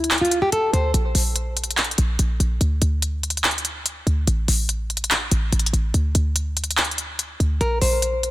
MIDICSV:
0, 0, Header, 1, 4, 480
1, 0, Start_track
1, 0, Tempo, 416667
1, 1084, Time_signature, 4, 2, 24, 8
1, 9571, End_track
2, 0, Start_track
2, 0, Title_t, "Nylon-string guitar"
2, 0, Program_c, 0, 24
2, 0, Note_on_c, 0, 64, 83
2, 198, Note_off_c, 0, 64, 0
2, 246, Note_on_c, 0, 65, 69
2, 445, Note_off_c, 0, 65, 0
2, 483, Note_on_c, 0, 67, 73
2, 584, Note_off_c, 0, 67, 0
2, 606, Note_on_c, 0, 69, 92
2, 806, Note_off_c, 0, 69, 0
2, 849, Note_on_c, 0, 72, 80
2, 1047, Note_off_c, 0, 72, 0
2, 8765, Note_on_c, 0, 70, 94
2, 8965, Note_off_c, 0, 70, 0
2, 9003, Note_on_c, 0, 72, 83
2, 9571, Note_off_c, 0, 72, 0
2, 9571, End_track
3, 0, Start_track
3, 0, Title_t, "808-style bass"
3, 0, Program_c, 1, 38
3, 0, Note_on_c, 1, 38, 105
3, 798, Note_off_c, 1, 38, 0
3, 844, Note_on_c, 1, 38, 106
3, 1075, Note_off_c, 1, 38, 0
3, 1084, Note_on_c, 1, 34, 113
3, 1315, Note_off_c, 1, 34, 0
3, 1324, Note_on_c, 1, 34, 100
3, 2246, Note_off_c, 1, 34, 0
3, 2285, Note_on_c, 1, 34, 103
3, 2515, Note_off_c, 1, 34, 0
3, 2524, Note_on_c, 1, 34, 110
3, 2755, Note_off_c, 1, 34, 0
3, 2764, Note_on_c, 1, 34, 104
3, 2995, Note_off_c, 1, 34, 0
3, 3004, Note_on_c, 1, 38, 112
3, 3234, Note_off_c, 1, 38, 0
3, 3244, Note_on_c, 1, 38, 101
3, 4638, Note_off_c, 1, 38, 0
3, 4684, Note_on_c, 1, 38, 104
3, 4915, Note_off_c, 1, 38, 0
3, 4924, Note_on_c, 1, 33, 117
3, 5155, Note_off_c, 1, 33, 0
3, 5164, Note_on_c, 1, 33, 104
3, 6086, Note_off_c, 1, 33, 0
3, 6124, Note_on_c, 1, 33, 101
3, 6354, Note_off_c, 1, 33, 0
3, 6364, Note_on_c, 1, 33, 111
3, 6595, Note_off_c, 1, 33, 0
3, 6604, Note_on_c, 1, 33, 103
3, 6835, Note_off_c, 1, 33, 0
3, 6844, Note_on_c, 1, 38, 111
3, 7075, Note_off_c, 1, 38, 0
3, 7084, Note_on_c, 1, 38, 103
3, 8478, Note_off_c, 1, 38, 0
3, 8525, Note_on_c, 1, 38, 102
3, 8755, Note_off_c, 1, 38, 0
3, 8765, Note_on_c, 1, 34, 115
3, 8995, Note_off_c, 1, 34, 0
3, 9005, Note_on_c, 1, 34, 107
3, 9571, Note_off_c, 1, 34, 0
3, 9571, End_track
4, 0, Start_track
4, 0, Title_t, "Drums"
4, 45, Note_on_c, 9, 42, 57
4, 125, Note_off_c, 9, 42, 0
4, 125, Note_on_c, 9, 39, 116
4, 125, Note_on_c, 9, 42, 60
4, 205, Note_off_c, 9, 42, 0
4, 205, Note_on_c, 9, 42, 60
4, 240, Note_off_c, 9, 39, 0
4, 285, Note_off_c, 9, 42, 0
4, 285, Note_on_c, 9, 42, 58
4, 362, Note_off_c, 9, 42, 0
4, 362, Note_on_c, 9, 42, 84
4, 478, Note_off_c, 9, 42, 0
4, 603, Note_on_c, 9, 42, 91
4, 718, Note_off_c, 9, 42, 0
4, 847, Note_on_c, 9, 42, 68
4, 962, Note_off_c, 9, 42, 0
4, 1084, Note_on_c, 9, 42, 68
4, 1200, Note_off_c, 9, 42, 0
4, 1324, Note_on_c, 9, 46, 80
4, 1439, Note_off_c, 9, 46, 0
4, 1562, Note_on_c, 9, 42, 84
4, 1677, Note_off_c, 9, 42, 0
4, 1804, Note_on_c, 9, 42, 60
4, 1884, Note_off_c, 9, 42, 0
4, 1884, Note_on_c, 9, 42, 60
4, 1965, Note_off_c, 9, 42, 0
4, 1965, Note_on_c, 9, 42, 60
4, 2044, Note_off_c, 9, 42, 0
4, 2044, Note_on_c, 9, 39, 116
4, 2044, Note_on_c, 9, 42, 61
4, 2124, Note_off_c, 9, 42, 0
4, 2124, Note_on_c, 9, 42, 58
4, 2159, Note_off_c, 9, 39, 0
4, 2204, Note_off_c, 9, 42, 0
4, 2204, Note_on_c, 9, 42, 61
4, 2281, Note_off_c, 9, 42, 0
4, 2281, Note_on_c, 9, 42, 85
4, 2397, Note_off_c, 9, 42, 0
4, 2523, Note_on_c, 9, 42, 88
4, 2638, Note_off_c, 9, 42, 0
4, 2767, Note_on_c, 9, 42, 65
4, 2882, Note_off_c, 9, 42, 0
4, 3005, Note_on_c, 9, 42, 68
4, 3120, Note_off_c, 9, 42, 0
4, 3244, Note_on_c, 9, 42, 77
4, 3359, Note_off_c, 9, 42, 0
4, 3483, Note_on_c, 9, 42, 83
4, 3598, Note_off_c, 9, 42, 0
4, 3725, Note_on_c, 9, 42, 60
4, 3804, Note_off_c, 9, 42, 0
4, 3804, Note_on_c, 9, 42, 59
4, 3885, Note_off_c, 9, 42, 0
4, 3885, Note_on_c, 9, 42, 60
4, 3964, Note_off_c, 9, 42, 0
4, 3964, Note_on_c, 9, 39, 117
4, 3964, Note_on_c, 9, 42, 59
4, 4044, Note_off_c, 9, 42, 0
4, 4044, Note_on_c, 9, 42, 60
4, 4079, Note_off_c, 9, 39, 0
4, 4125, Note_off_c, 9, 42, 0
4, 4125, Note_on_c, 9, 42, 60
4, 4202, Note_off_c, 9, 42, 0
4, 4202, Note_on_c, 9, 42, 85
4, 4317, Note_off_c, 9, 42, 0
4, 4443, Note_on_c, 9, 42, 91
4, 4558, Note_off_c, 9, 42, 0
4, 4687, Note_on_c, 9, 42, 66
4, 4802, Note_off_c, 9, 42, 0
4, 4924, Note_on_c, 9, 42, 67
4, 5039, Note_off_c, 9, 42, 0
4, 5164, Note_on_c, 9, 46, 81
4, 5279, Note_off_c, 9, 46, 0
4, 5403, Note_on_c, 9, 42, 81
4, 5518, Note_off_c, 9, 42, 0
4, 5644, Note_on_c, 9, 42, 44
4, 5725, Note_off_c, 9, 42, 0
4, 5725, Note_on_c, 9, 42, 59
4, 5805, Note_off_c, 9, 42, 0
4, 5805, Note_on_c, 9, 42, 72
4, 5885, Note_on_c, 9, 39, 118
4, 5886, Note_off_c, 9, 42, 0
4, 5886, Note_on_c, 9, 42, 77
4, 6000, Note_off_c, 9, 39, 0
4, 6001, Note_off_c, 9, 42, 0
4, 6123, Note_on_c, 9, 42, 85
4, 6238, Note_off_c, 9, 42, 0
4, 6365, Note_on_c, 9, 42, 75
4, 6445, Note_off_c, 9, 42, 0
4, 6445, Note_on_c, 9, 42, 76
4, 6525, Note_off_c, 9, 42, 0
4, 6525, Note_on_c, 9, 42, 72
4, 6608, Note_off_c, 9, 42, 0
4, 6608, Note_on_c, 9, 42, 67
4, 6723, Note_off_c, 9, 42, 0
4, 6845, Note_on_c, 9, 42, 65
4, 6960, Note_off_c, 9, 42, 0
4, 7084, Note_on_c, 9, 42, 78
4, 7199, Note_off_c, 9, 42, 0
4, 7323, Note_on_c, 9, 42, 87
4, 7438, Note_off_c, 9, 42, 0
4, 7565, Note_on_c, 9, 42, 62
4, 7645, Note_off_c, 9, 42, 0
4, 7645, Note_on_c, 9, 42, 60
4, 7725, Note_off_c, 9, 42, 0
4, 7725, Note_on_c, 9, 42, 60
4, 7805, Note_off_c, 9, 42, 0
4, 7805, Note_on_c, 9, 39, 115
4, 7805, Note_on_c, 9, 42, 58
4, 7885, Note_off_c, 9, 42, 0
4, 7885, Note_on_c, 9, 42, 61
4, 7920, Note_off_c, 9, 39, 0
4, 7965, Note_off_c, 9, 42, 0
4, 7965, Note_on_c, 9, 42, 59
4, 8043, Note_off_c, 9, 42, 0
4, 8043, Note_on_c, 9, 42, 84
4, 8158, Note_off_c, 9, 42, 0
4, 8283, Note_on_c, 9, 42, 91
4, 8398, Note_off_c, 9, 42, 0
4, 8528, Note_on_c, 9, 42, 68
4, 8643, Note_off_c, 9, 42, 0
4, 8765, Note_on_c, 9, 42, 68
4, 8880, Note_off_c, 9, 42, 0
4, 9003, Note_on_c, 9, 46, 78
4, 9119, Note_off_c, 9, 46, 0
4, 9243, Note_on_c, 9, 42, 86
4, 9358, Note_off_c, 9, 42, 0
4, 9485, Note_on_c, 9, 42, 60
4, 9571, Note_off_c, 9, 42, 0
4, 9571, End_track
0, 0, End_of_file